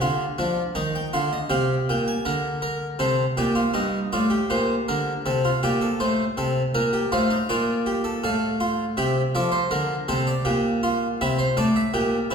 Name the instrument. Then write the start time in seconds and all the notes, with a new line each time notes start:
harpsichord
Already playing: G#5
0.01 D3 F4
0.38 F3 D4
0.75 D#3 D#4 A#5
0.95 G5
1.13 D3 F4 F5
1.33 D#5
1.50 C3 G4 F5
1.89 A#2 G5
2.08 G#5
2.25 D3 A#4 A#5
2.62 A#4
2.99 C3 A4 C5
3.37 A#2 G4 D5
3.55 F4
3.74 G2 D#4 D#5
4.13 A2 F4 D5
4.30 G4
4.50 A#2 C5
4.88 D3 A#4
5.26 C3 A4
5.45 F4
5.63 A#2 G4 D5
5.81 A4
6.00 A2 C5
6.37 C3 A4
6.75 A#2 A#4
6.93 G4
7.12 A2 F4 C5
7.30 D#4
7.49 A#2 F4 D5
7.86 G4
8.04 A4
8.24 A2 A4 F5
8.60 F4
8.97 C3 G4 E5
9.35 F3 A4 D5
9.52 C5
9.71 D3 A#4
10.08 C3 A4 C5
10.27 D5
10.45 A#2 G4
10.83 F4
11.21 C3 E4 E5
11.39 C5
11.57 A2 A4 D5
11.76 E5
11.94 A#2 G4
12.31 C3 E4